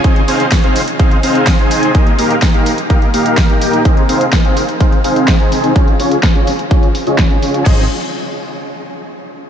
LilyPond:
<<
  \new Staff \with { instrumentName = "Supersaw synth" } { \time 4/4 \key aes \major \tempo 4 = 126 <c' ees' aes' c'' ees''>16 r16 <c' ees' aes' c'' f''>16 r8 <c' ees' aes' c'' f''>16 r8 <c' ees' aes' c'' f''>16 r16 <c' ees' aes' c'' f''>8. <c' ees' aes' c'' aes''>8. | <bes ees' g' bes' ees''>16 r16 <bes ees' g' bes' f''>16 r8 <bes ees' g' bes' f''>16 r8 <bes ees' g' bes' f''>16 r16 <bes ees' g' bes' f''>8. <bes ees' g' bes' g''>8. | <c' ees' aes' c'' ees''>16 r16 <c' ees' aes' c'' f''>16 r8 <c' ees' aes' c'' f''>16 r8 <c' ees' aes' c'' f''>16 r16 <c' ees' aes' c'' f''>8. <c' ees' aes' c'' aes''>8. | <des' f' aes' des'' f''>16 r16 <des' f' aes' des'' aes''>16 r8 <des' f' aes' des'' aes''>16 r8 <des' f' aes' des'' aes''>16 r8 <des' f' aes' des'' ees''>8 <des' f' aes' des'' aes''>16 <des' f' aes' des'' aes''>8 |
<c' ees' aes' c'' ees''>8 r2. r8 | }
  \new Staff \with { instrumentName = "Analog synth bass" } { \clef bass \time 4/4 \key aes \major r1 | r1 | r1 | r1 |
aes,,8 r2. r8 | }
  \new DrumStaff \with { instrumentName = "Drums" } \drummode { \time 4/4 <hh bd>16 hh16 hho16 hh16 <hh bd sn>16 hh16 hho16 hh16 <hh bd>16 hh16 hho16 hh16 <hh bd sn>16 hh16 hho16 hh16 | <hh bd>16 hh16 hho16 hh16 <hh bd sn>16 hh16 hho16 hh16 <hh bd>16 hh16 hho16 hh16 <hh bd sn>16 hh16 hho16 hh16 | <hh bd>16 hh16 hho16 hh16 <hh bd sn>16 hh16 hho16 hh16 <hh bd>16 hh16 hho16 hh16 <hh bd sn>16 hh16 hho16 hh16 | <hh bd>16 hh16 hho16 hh16 <hh bd sn>16 hh16 hho16 hh16 <hh bd>16 hh16 hho16 hh16 <hh bd sn>16 hh16 hho16 hh16 |
<cymc bd>4 r4 r4 r4 | }
>>